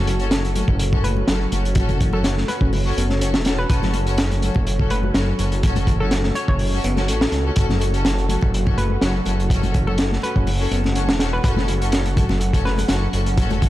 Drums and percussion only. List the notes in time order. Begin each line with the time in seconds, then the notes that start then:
0.07 closed hi-hat, muted conga
0.19 closed hi-hat
0.31 snare, closed hi-hat, muted conga
0.45 closed hi-hat
0.55 closed hi-hat, high conga
0.68 kick, muted conga
0.79 closed hi-hat
0.93 kick, muted conga
1.04 closed hi-hat
1.17 high conga
1.28 snare, closed hi-hat, muted conga
1.52 closed hi-hat, muted conga
1.65 closed hi-hat
1.75 kick, closed hi-hat
1.89 closed hi-hat, muted conga, high conga, low conga
2.01 kick, closed hi-hat
2.13 muted conga
2.24 snare, closed hi-hat
2.37 snare
2.48 closed hi-hat, muted conga, high conga
2.61 kick
2.73 open hi-hat, muted conga
2.98 closed hi-hat
3.10 snare, muted conga, high conga
3.21 closed hi-hat
3.34 snare, muted conga
3.45 snare, closed hi-hat
3.69 kick, closed hi-hat, muted conga
3.83 snare, high conga, low conga
3.94 closed hi-hat, muted conga
4.07 closed hi-hat
4.18 snare, closed hi-hat
4.31 closed hi-hat, muted conga
4.42 closed hi-hat, high conga
4.54 kick, muted conga
4.67 closed hi-hat
4.79 kick
4.90 closed hi-hat, muted conga
5.03 high conga
5.14 snare, closed hi-hat, muted conga
5.39 closed hi-hat
5.52 closed hi-hat, muted conga
5.63 kick, closed hi-hat
5.76 closed hi-hat, muted conga, high conga, low conga
5.87 kick, closed hi-hat
6.11 snare, closed hi-hat, muted conga
6.23 snare
6.35 closed hi-hat, muted conga, high conga
6.48 kick
6.59 open hi-hat
6.73 muted conga
6.84 closed hi-hat
6.97 snare, muted conga, high conga
7.08 closed hi-hat
7.21 snare
7.32 snare, closed hi-hat, muted conga
7.56 kick, closed hi-hat
7.70 snare, high conga, low conga
7.80 closed hi-hat, muted conga
7.94 closed hi-hat
8.05 snare, closed hi-hat, muted conga
8.18 closed hi-hat
8.29 closed hi-hat, high conga
8.41 kick, muted conga
8.54 closed hi-hat
8.66 kick, muted conga
8.78 closed hi-hat
8.90 high conga
9.01 snare, closed hi-hat, muted conga
9.25 closed hi-hat, muted conga
9.40 closed hi-hat
9.50 kick, closed hi-hat
9.63 closed hi-hat, muted conga, high conga, low conga
9.74 kick, closed hi-hat
9.87 muted conga
9.98 snare, closed hi-hat
10.13 snare
10.22 closed hi-hat, muted conga, high conga
10.36 kick
10.47 open hi-hat, muted conga
10.71 closed hi-hat
10.84 snare, muted conga, high conga
10.95 closed hi-hat
11.09 snare, muted conga
11.19 snare, closed hi-hat
11.43 kick, closed hi-hat, muted conga
11.56 snare, high conga, low conga
11.68 closed hi-hat, muted conga
11.82 closed hi-hat
11.92 snare, closed hi-hat
12.05 closed hi-hat, muted conga
12.16 kick, closed hi-hat, high conga
12.29 snare, muted conga
12.41 closed hi-hat
12.54 kick, closed hi-hat
12.66 snare, muted conga
12.78 closed hi-hat, high conga
12.88 snare, closed hi-hat, muted conga
13.13 closed hi-hat
13.26 closed hi-hat, muted conga
13.37 kick, closed hi-hat
13.50 closed hi-hat, muted conga, high conga, low conga
13.62 kick, closed hi-hat